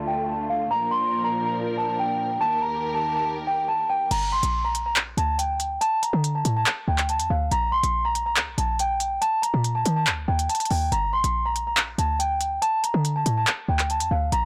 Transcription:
Already playing: D2 D3 A3 F4
0.07 G5
0.29 A5
0.50 F5
0.71 A#2 F3 D4 A#4 A#5
0.91 C6
1.24 A#5
1.45 A#5
1.78 A5
1.99 G5
2.41 D#2 D#3 G4 A#4 A5
2.94 A5
3.16 A5
3.47 G5
3.68 A5
3.90 G5
4.11 G1 A#5, closed hi-hat, crash
4.32 C6
4.43 A#1, closed hi-hat
4.65 A#5
4.75 closed hi-hat
4.86 A#5
4.96 clap, closed hi-hat
5.17 D2 A5, closed hi-hat
5.39 G5, closed hi-hat
5.60 closed hi-hat
5.81 A5, closed hi-hat
6.03 closed hi-hat
6.13 D3
6.24 closed hi-hat
6.35 A5
6.45 A2, closed hi-hat
6.57 A5
6.66 clap, closed hi-hat
6.88 D2 G5
6.98 clap, closed hi-hat
7.09 A5, closed hi-hat
7.20 F2, closed hi-hat
7.30 D2 F5
7.51 A#1 A#5, closed hi-hat
7.72 A1 C6
7.83 A#1, closed hi-hat
8.05 A#5
8.15 closed hi-hat
8.26 A#5
8.36 D2, clap, closed hi-hat
8.47 A#1
8.58 A#1 A5, closed hi-hat
8.79 G5, closed hi-hat
9.00 closed hi-hat
9.22 A5, closed hi-hat
9.42 A#5, closed hi-hat
9.54 A#2
9.64 closed hi-hat
9.75 A5
9.85 D#3, closed hi-hat
9.96 A5
10.07 D2, clap, closed hi-hat
10.28 D#2 G5
10.39 closed hi-hat
10.49 A5, closed hi-hat
10.55 closed hi-hat
10.60 closed hi-hat
10.65 closed hi-hat
10.70 D#2 G5, open hi-hat
10.92 G1 A#5, closed hi-hat
11.13 C6
11.24 A#1, closed hi-hat
11.46 A#5
11.56 closed hi-hat
11.67 A#5
11.77 clap, closed hi-hat
11.98 D2 A5, closed hi-hat
12.19 G5, closed hi-hat
12.41 closed hi-hat
12.62 A5, closed hi-hat
12.84 closed hi-hat
12.94 D3
13.05 closed hi-hat
13.16 A5
13.26 A2, closed hi-hat
13.37 A5
13.47 clap, closed hi-hat
13.68 D2 G5
13.79 clap, closed hi-hat
13.90 A5, closed hi-hat
14.00 F2, closed hi-hat
14.11 D2 F5
14.32 A#1 A#5, closed hi-hat

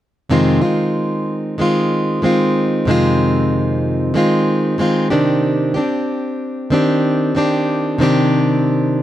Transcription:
0.30 F2 C3 D#3 G#3 C4 F4
0.61 D#3 G#3 C4 F4
1.58 D#3 G#3 C4 F4
2.22 D#3 G#3 C4 F4
2.85 F2 C3 D#3 G#3
2.90 C4 F4
4.14 D#3 G#3 C4 F4
4.78 D#3 G#3 C4 F4
5.10 C3 D#3 C4 D4 G4
5.74 C4 D4 G4
6.70 D#3 C4 D4 G4
7.35 D#3 C4 D4 G4
7.98 C3 D#3 C4 D4
8.03 G4

